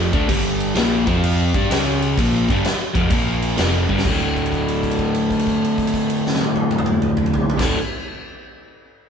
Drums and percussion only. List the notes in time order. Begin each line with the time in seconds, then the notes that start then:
0.13 kick, crash
0.29 kick, crash
0.60 crash
0.76 snare, crash
1.07 kick, crash
1.24 crash
1.54 kick, crash
1.71 snare, crash
2.02 crash
2.18 kick, crash
2.49 kick, crash
2.65 snare, crash
2.95 kick, crash
3.10 kick, crash
3.42 crash
3.58 snare, crash
3.89 kick
3.98 snare
4.05 kick, crash
4.37 kick, crash
4.46 crash
4.53 kick, crash
4.68 crash
4.83 kick, crash
4.91 crash
4.99 kick, crash
5.15 crash
5.31 kick, crash
5.39 crash
5.47 kick, crash
5.65 crash
5.78 kick, crash
5.87 crash
5.94 kick, crash
6.10 crash
6.27 snare
6.34 snare
6.41 high tom
6.56 high tom
6.71 high tom
6.78 mid tom
6.86 mid tom
7.02 mid tom
7.17 mid tom
7.26 mid tom
7.34 floor tom
7.50 floor tom
7.59 kick, snare, crash